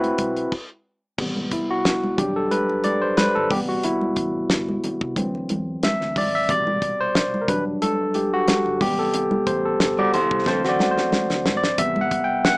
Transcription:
Already playing: A2 C4 E4 F#4 B4
0.04 closed hi-hat, muted conga
0.18 B1, kick, closed hi-hat, high conga
0.36 closed hi-hat
0.52 kick, crash
1.18 A1 C3 G3 B3, kick, crash, muted conga, low conga
1.36 high conga
1.51 E4, kick, closed hi-hat
1.70 F#4
1.85 snare, closed hi-hat, muted conga
2.04 high conga
2.17 E1 F#3 G3 D4 G4, kick, closed hi-hat, low conga
2.36 A4
2.51 B4, closed hi-hat, muted conga, high conga
2.70 muted conga
2.84 D5, closed hi-hat, high conga
3.02 C5
3.17 B4, snare, closed hi-hat, muted conga, high conga
3.35 G1 A4, muted conga
3.50 A1 C3 G3 B3 G4, kick, open hi-hat, high conga, low conga
3.69 F#4
3.83 E4, closed hi-hat, muted conga, low conga
4.01 muted conga, high conga
4.16 A1, kick, closed hi-hat
4.50 G1, snare, closed hi-hat, muted conga
4.68 muted conga, high conga
4.84 closed hi-hat, low conga
5.01 C2, kick
5.16 D2 E3 F#3 C4, kick, closed hi-hat, muted conga, high conga
5.35 muted conga
5.49 E2, closed hi-hat, high conga
5.83 E5, snare, closed hi-hat, muted conga, high conga
6.01 D2, snare
6.16 G#1 D5, kick, open hi-hat, high conga, low conga
6.35 E5
6.49 A1 B2 C3 G3 D5, kick, closed hi-hat, muted conga, low conga
6.67 high conga
6.82 kick, closed hi-hat
7.01 C5
7.15 snare, closed hi-hat, muted conga
7.34 muted conga, high conga
7.41 A#4
7.48 E1 F#3 G3 D4 B4, kick, closed hi-hat, low conga
7.82 A4, closed hi-hat, muted conga, high conga
8.14 G4, closed hi-hat, high conga
8.34 F#4
8.48 snare, closed hi-hat, muted conga, high conga
8.66 G1, muted conga
8.81 A1 C3 G3 B3 G4, kick, open hi-hat, high conga, low conga
8.99 A4
9.14 closed hi-hat, muted conga, low conga
9.31 muted conga, high conga
9.47 A1 C5, kick, closed hi-hat
9.65 A4
9.80 G1, snare, closed hi-hat
9.98 F#4 D5, high conga
10.14 E4 C5, closed hi-hat, low conga
10.31 C2, kick
10.46 D2 E3 F#3 C4 A4 C5, kick, snare, high conga
10.64 A3 F#4, snare, muted conga
10.69 D5
10.79 E2, snare, high conga
10.91 C5
10.98 snare
11.12 snare, high conga
11.30 D2, snare, muted conga
11.46 G#1, snare, high conga, low conga
11.57 D5
11.64 snare
11.78 A1 C3 G3 B3 E5, kick, closed hi-hat, muted conga, low conga
11.96 muted conga, high conga
12.01 F#5
12.11 kick, closed hi-hat
12.24 G5
12.45 F#5, snare, closed hi-hat, muted conga

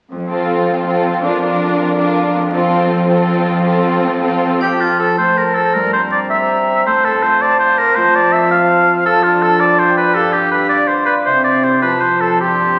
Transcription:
0.12 F2
0.30 C4 F4 A4
0.49 A4
0.68 F2 C5
0.87 C4 F4 A4 F5
1.06 A4
1.23 F2 D4 F4 A#4
1.42 D4 F4 A#4
1.61 A#4
1.79 F2 D5
1.97 D4 F4 A#4 F5
2.16 A#4
2.34 F2
2.52 C4 F4 A4
2.71 A4
2.90 F2 C5
3.07 C4 F4 A4 F5
3.27 A4
3.45 F2
3.64 C4 F4 A4
3.83 A4
4.02 F2 C5
4.21 C4 F4 A4 F5
4.41 A4
4.60 F2 F4 G4 A5, triangle
4.80 C4 F4
4.99 A4
5.18 A3 C5 A5
5.36 A#4 A5
5.55 A4 C5
5.74 G2 G3 A#4 A#5
5.93 C4 C5
6.11 G4 D5
6.30 C5 E5 A#5
6.49 G5
6.67 C5
6.86 A2 A3 C5 A5
7.04 C4 A4
7.23 F4 C5
7.41 C5 D5
7.59 C5 F5
7.78 A#4 C5
7.95 F2 F4 C5 A5
8.15 C4 D5
8.32 F4 E5
8.51 C5 F5 A5
8.69 F5
8.87 C5
9.05 F2 F4 A4 A5
9.23 D4 F4
9.42 F4 A4
9.60 D5 A5
9.79 C5 F5
9.89 G5
9.97 B4 D5
10.14 G2 G4 A4 F5
10.32 D4 G4
10.51 F4 B4
10.69 D5 F5
10.87 C5 F5
11.06 B4 D5
11.25 C3 C4 C5 E5
11.44 C4 D5
11.63 E4 G4 C5
11.82 F2 F4 B4 A5
12.01 C4 C5
12.21 F4 A4
12.41 G2 G4 C6
12.61 C4

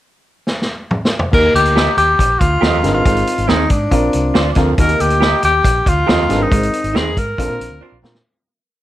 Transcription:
0.47 snare
0.62 snare
0.91 mid tom
1.05 snare
1.19 floor tom
1.32 D#2 A#3 D#4 G4 A#4, kick, crash
1.54 D2 G4, closed hi-hat
1.65 closed hi-hat
1.75 G4 A#4 D#5, snare
1.97 D#2 G4, closed hi-hat
2.19 A#1, kick, closed hi-hat
2.39 D2 F4, kick, closed hi-hat
2.61 D#2 F2 G4 A#4 D#5, snare
2.83 G#1 G2 C4 D#4 G#4 A#4, snare, closed hi-hat
2.94 F4
3.05 G#1 G#2, kick, closed hi-hat
3.16 closed hi-hat
3.27 closed hi-hat
3.38 G#1, closed hi-hat
3.48 D#2 C4 D#4 G#4 A#4, snare
3.70 G#2 D4, kick, closed hi-hat
3.91 A#1 C4 D4 F4 A#4, kick, closed hi-hat
4.13 C2, closed hi-hat
4.34 D2 F4 C5 D5, snare
4.55 D2 F2 C4 D4 F4 A#4, kick, snare, closed hi-hat
4.77 D#2 A#3 D#4 F#4 A#4, kick, closed hi-hat
4.85 G4
4.89 closed hi-hat
5.00 D2 G4, closed hi-hat
5.10 closed hi-hat
5.20 G4 A#4 D#5, snare
5.43 D#2 G4, closed hi-hat
5.64 A#1, kick, closed hi-hat
5.86 D2 F4, kick, closed hi-hat
6.07 D#2 F2 G4 A#4 D#5, snare
6.29 G#1 G2 C4 D#4 G#4 A4, snare, closed hi-hat
6.36 A#4
6.42 D#4
6.51 G#1 G#2, kick, closed hi-hat
6.63 closed hi-hat
6.73 closed hi-hat
6.84 G#1, closed hi-hat
6.94 D#2 D#4 G#4 A#4 C5, snare
7.17 G#2 A#4, kick, closed hi-hat
7.38 A#1 C4 D4 F4 A4, kick, closed hi-hat
7.45 A#2 A#4
7.60 A#1, closed hi-hat
7.70 D2
7.81 D4 F4 C5
7.92 A#1
8.03 A#2 C4 D4 F4 A#4, snare
8.15 snare

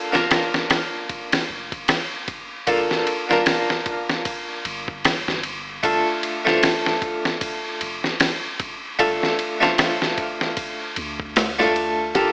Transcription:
0.12 A#3 D4 F4 A#4, snare
0.31 snare, ride
0.54 snare
0.70 snare, ride
1.09 kick, ride
1.32 snare, ride
1.49 F1
1.72 kick, ride
1.88 snare, ride
2.28 kick, ride
2.67 G1 A#3 D4 F4 A4, kick, ride
2.91 snare
3.07 ride
3.29 A#3 D4 F4 A#4, snare
3.46 snare, ride
3.70 snare
3.86 kick, ride
4.09 snare
4.25 kick, ride
4.65 G1, ride
4.88 kick
5.05 snare, ride
5.28 G1, snare
5.43 ride
5.83 G1 A3 D4 F4 A4, kick, ride
6.23 ride
6.45 A3 D4 F4 C5, snare
6.63 snare, ride
6.86 snare
7.02 kick, ride
7.25 snare
7.41 kick, ride
7.81 F1, ride
8.04 snare
8.20 snare, ride
8.60 kick, ride
8.99 G1 A3 D4 F4 A4, kick, ride
9.23 snare
9.39 ride
9.60 A3 D4 F4 C5, snare
9.78 snare, ride
10.02 snare
10.18 kick, ride
10.41 snare
10.57 kick, ride
10.96 D2, ride
11.20 kick
11.36 snare, ride
11.59 A3 D4 F4 D5, snare
11.76 ride
12.15 G1 A#3 D4 F4 G4 A4, kick, ride

